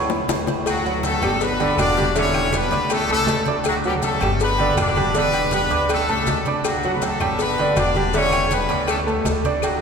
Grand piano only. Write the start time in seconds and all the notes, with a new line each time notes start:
Already playing: F#3 C#4 E4 C#5 F#5 A5 C#6
0.86 F#3 F#4 F#5
1.24 G3 G4 G5
1.60 D3 D4 D5
1.98 G3 G4 G5
2.15 D3 D4 E5
2.54 G3 G4 G5
2.72 D4 D5 D6
3.10 A3 A4 A5
3.47 D4 D5 D6
3.85 F#3 F#4 F#5
4.23 G3 G4 G5
4.60 D3 D4 D5
4.97 G3 G4 G5
5.15 D3 D4 D5
5.52 G3 G4 G5
5.70 D4 D5 D6
6.09 A3 A4 A5
6.47 D4 D5 D6
6.85 F#3 F#4 F#5
7.22 G3 G4 G5
7.59 D3 D4 D5
7.96 G3 G4 G5
8.14 D3 D4 E5
8.53 G3 G4 G5
8.70 D4 D5 D6
9.07 A3 A4 A5
9.46 D4 D5 D6